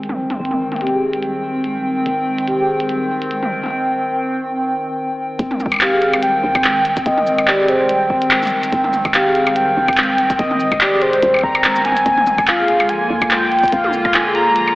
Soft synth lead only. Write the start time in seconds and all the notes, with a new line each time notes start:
5.81 F5
6.23 G5
7.06 D#5
7.48 D5
7.69 C5
9.14 F5
9.56 G5
10.39 D#5
10.81 D5
11.02 C5
11.44 A#5
11.85 G#5
12.48 F5
12.89 G#5
13.31 G5
13.73 F5
14.14 G#5
14.35 A#5